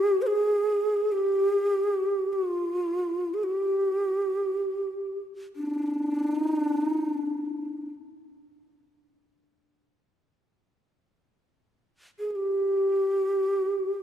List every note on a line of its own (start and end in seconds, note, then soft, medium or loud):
0.00 0.23 G4 medium
0.22 0.28 C5 medium
0.27 1.13 G#4 medium
1.12 2.34 G4 medium
2.33 2.51 F#4 medium
2.51 3.35 F4 medium
3.34 3.45 G#4 soft
3.44 5.20 G4 medium
5.56 6.39 D4 medium
6.39 6.61 D#4 medium
6.61 6.86 D4 medium
6.86 7.08 D#4 medium
7.08 7.90 D4 medium
12.19 12.31 G#4 soft
12.31 12.36 G#4 medium
12.35 14.03 G4 medium